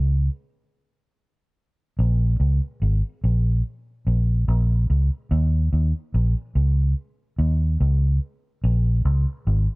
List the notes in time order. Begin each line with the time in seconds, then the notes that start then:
Already playing: C#2
1.99 A#1
2.40 C#2
2.82 G#1
3.24 A#1
4.07 A#1
4.48 A#1
4.90 C#2
5.31 D#2
5.73 D#2
6.14 A#1
6.55 C#2
7.39 D#2
7.80 C#2
8.64 A#1
9.05 C#2
9.47 G#1